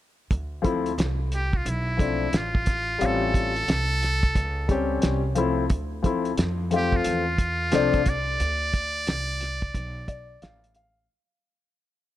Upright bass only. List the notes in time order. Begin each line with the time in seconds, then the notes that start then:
0.31 D2
0.98 C2
1.65 B1
2.33 A1
3.01 A1
3.68 C2
4.36 C#2
5.04 C2
5.70 D2
6.38 F2
7.05 E2
7.73 C2
8.40 D2
9.07 C2
9.75 B1
10.42 A1